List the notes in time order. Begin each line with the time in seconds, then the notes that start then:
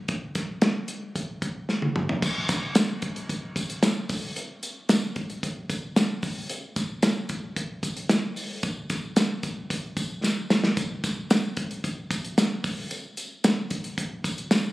0.08 kick, closed hi-hat
0.35 kick, snare, closed hi-hat
0.62 snare, closed hi-hat
0.88 closed hi-hat
1.16 kick, closed hi-hat
1.42 kick, closed hi-hat
1.69 snare
1.82 high tom
1.96 mid tom
2.09 floor tom
2.22 kick, crash, tambourine
2.49 kick, snare, closed hi-hat, tambourine
2.75 snare, closed hi-hat, tambourine
3.02 kick, closed hi-hat
3.16 closed hi-hat
3.29 kick, closed hi-hat
3.56 kick, closed hi-hat, tambourine
3.70 closed hi-hat
3.83 snare, closed hi-hat, tambourine
4.09 kick, open hi-hat, tambourine
4.36 closed hi-hat, tambourine
4.63 closed hi-hat, tambourine
4.89 snare, closed hi-hat, tambourine
5.16 kick, closed hi-hat
5.30 closed hi-hat
5.43 kick, closed hi-hat
5.70 kick, closed hi-hat, tambourine
5.96 snare, closed hi-hat, tambourine
6.23 kick, open hi-hat, tambourine
6.49 closed hi-hat, tambourine
6.76 kick, snare, closed hi-hat, tambourine
7.03 snare, closed hi-hat, tambourine
7.29 kick, closed hi-hat, tambourine
7.56 kick, closed hi-hat
7.83 kick, closed hi-hat, tambourine
7.97 closed hi-hat
8.09 snare, closed hi-hat, tambourine
8.36 open hi-hat, tambourine
8.63 kick, closed hi-hat, tambourine
8.90 kick, snare, closed hi-hat, tambourine
9.16 snare, closed hi-hat, tambourine
9.43 kick, closed hi-hat, tambourine
9.70 kick, closed hi-hat, tambourine
9.97 kick, closed hi-hat, tambourine
10.24 snare, tambourine
10.50 snare, tambourine
10.64 snare
10.77 kick, closed hi-hat, tambourine
11.04 kick, snare, closed hi-hat, tambourine
11.30 snare, closed hi-hat, tambourine
11.57 kick, closed hi-hat
11.71 closed hi-hat
11.84 kick, closed hi-hat, tambourine
12.11 kick, closed hi-hat, tambourine
12.25 closed hi-hat
12.38 snare, closed hi-hat, tambourine
12.64 kick, open hi-hat, tambourine
12.91 closed hi-hat, tambourine
13.17 closed hi-hat, tambourine
13.44 snare, closed hi-hat, tambourine
13.70 kick, closed hi-hat
13.84 closed hi-hat
13.98 kick, closed hi-hat
14.24 kick, closed hi-hat, tambourine
14.38 closed hi-hat
14.51 snare, closed hi-hat, tambourine